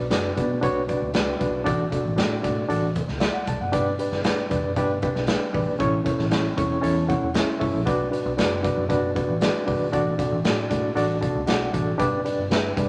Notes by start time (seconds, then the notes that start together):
Already playing: B2
0.10 F#1 D4 F#4 B4 D5, snare, closed hi-hat
0.36 B2 D4 F#4 B4 D5, kick, closed hi-hat
0.61 B1 D4 F#4 B4 C#5, kick, closed hi-hat
0.87 D4 F#4 B4 D5, kick, closed hi-hat
1.02 D2
1.14 C#2 D4 F#4 B4 D5, snare, closed hi-hat
1.39 B1 D4 F#4 B4 D5, kick, closed hi-hat
1.64 A1 A2 D4 F#4 A4 D5, kick, closed hi-hat
1.90 D4 F#4 A4 D5, kick, closed hi-hat
2.05 A1
2.16 A2 D4 F#4 A4 D5, snare, closed hi-hat
2.42 A2 D4 F#4 A4 D5, kick, closed hi-hat
2.68 A1 D4 F#4 A4 D5, closed hi-hat
2.95 kick, closed hi-hat
3.08 C#2, snare
3.20 D5 E5, snare, closed hi-hat
3.34 F#5
3.47 B1 A5, kick, closed hi-hat
3.60 F#1 F#5
3.72 G1 G2 D4 G4 B4 D5, kick, closed hi-hat
3.99 D4 G4 B4 D5, closed hi-hat
4.12 G1, snare
4.24 D4 G4 B4 D5, snare, closed hi-hat
4.50 E1 D4 G4 B4 D5, kick, closed hi-hat
4.64 F#1
4.76 G1 D4 G4 B4 D5, kick, closed hi-hat
5.02 D4 G4 B4 D5, kick, closed hi-hat
5.15 B1, snare
5.27 D4 G4 B4 D5, snare, closed hi-hat
5.53 A1 D4 G4 B4 D5, kick, open hi-hat
5.67 G#1
5.79 A1 A2 C#4 E4 A4 C#5, kick, closed hi-hat
6.04 C#4 E4 A4 C#5, kick, closed hi-hat
6.19 A1, snare
6.30 C#4 E4 A4 C#5, snare, closed hi-hat
6.56 E1 C#4 E4 A4 C#5 C#6, kick, closed hi-hat
6.81 E2 C#4 E4 A4 C#5 A5, closed hi-hat
7.07 C#4 E4 A4 C#5 F#5, kick, closed hi-hat
7.22 E1
7.34 C#4 E4 A4 C#5 E5, snare, closed hi-hat
7.59 G1 C#4 E4 A4 C#5 E5, kick, open hi-hat
7.74 A#1
7.85 B1 B2 D4 F#4 B4 D5, kick, closed hi-hat
8.11 D4 F#4 B4 D5, closed hi-hat
8.26 B1
8.37 F#1 D4 F#4 B4 D5, snare, closed hi-hat
8.63 D4 F#4 B4 D5, kick, closed hi-hat
8.77 F#2
8.89 F#1 D4 F#4 B4 D5, kick, closed hi-hat
9.15 D4 F#4 B4 D5, kick, closed hi-hat
9.29 A1
9.40 D4 F#4 B4 D5, snare, closed hi-hat
9.66 G1 D4 F#4 B4 D5, kick, open hi-hat
9.79 G#1
9.92 A1 A2 D4 F#4 A4 D5, kick, closed hi-hat
10.18 D4 F#4 A4 D5, kick, closed hi-hat
10.31 A1
10.44 A2 D4 F#4 A4 D5, snare, closed hi-hat
10.70 A2 D4 F#4 A4 D5, kick, closed hi-hat
10.95 A1 D4 F#4 A4 D5, closed hi-hat
11.21 D4 F#4 A4 D5 A5, kick, closed hi-hat
11.35 C#2
11.46 B1 D4 F#4 A4 D5 F#5, snare, closed hi-hat
11.73 A1 D4 F#4 A4 D5, kick, closed hi-hat
11.98 G1 G2 D4 G4 B4 D5, kick, closed hi-hat
12.25 D4 G4 B4 D5, closed hi-hat
12.38 G1
12.50 G1 D4 G4 B4 E5, snare, closed hi-hat
12.76 G2 D4 G4 B4 D5, kick, closed hi-hat